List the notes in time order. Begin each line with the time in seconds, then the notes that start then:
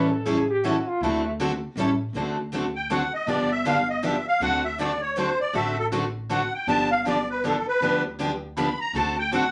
Already playing: A1 B4
0.11 A4
0.25 E3 G3 C#4 E4 G#4 A4
0.50 G4
0.64 E3 G3 C#4 E4 F#4 A4
0.88 F4
1.01 D2 D3 A3 C4 E4 F#4 A4
1.25 A3
1.40 D3 A3 C4 F#4 A4
1.75 A1 E3 G3 C#4
1.80 E4 A4
2.13 D2 D3 A3 C4 F#4
2.17 A4
2.54 D3 A3 C4 F#4 A4
2.76 G5
2.90 D3 A3 C4 F#4 A4 F#5
3.14 D#5
3.26 G1 D3 F3 B3 D4 G4 D5
3.51 E5
3.65 D3 F3 B3 D4 G4 F5
3.89 D#5
4.03 D3 F3 B3 D4 G4 E5
4.27 F5
4.40 D2 D3 A3 C4 F#4 A4 F#5
4.64 E5
4.79 D3 A3 C4 F#4 A4 D5
5.02 C#5
5.17 D3 A3 C4 F#4 A4 C5
5.40 D5
5.53 A1 D3 A3 C4 F#4 A4 E5
5.78 A4
5.92 D3 A3 C4 F#4 A4
6.29 D3 A3 C4 F#4 A4 F#5
6.54 G5
6.67 G1 D3 F3 B3 D4 G4 A5
6.91 F5
7.05 D3 F3 B3 D4 G4 D5
7.30 B4
7.44 D3 F3 B3 D4 G4 A4
7.68 B4
7.81 D2 D3 F3 B3 D4 G4
8.19 D3 F3 B3 D4 G4
8.57 D3 F3 B3 D4 G4 B5
8.80 A#5
8.93 D2 D3 A3 C4 F#4 A4 A5
9.19 G5
9.31 D3 A3 C4 F#4 A4 F#5